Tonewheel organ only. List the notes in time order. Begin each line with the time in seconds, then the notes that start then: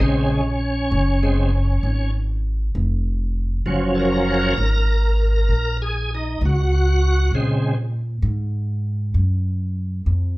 0.00 C#3 G#3 C4 C#4
0.28 C4
0.33 C#4
1.23 C#3 G#3 C4
3.66 F3 F#3 C#4
3.95 A4
3.99 A#4
5.82 G#4
6.15 D#4
6.45 F#4
7.34 C#3 G#3 C4